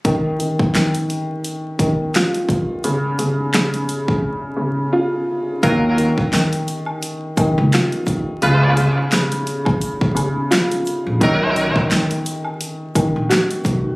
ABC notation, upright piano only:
X:1
M:4/4
L:1/8
Q:"Swing 16ths" 1/4=86
K:Ebm
V:1 name="Upright piano" clef=bass
E, E, E,3 E, F2 | D, D, D,3 D, F2 | E, E, E,3 E, F2 | D, D, D,3 D, F2 |
^D, D, D,3 D, ^F2 |]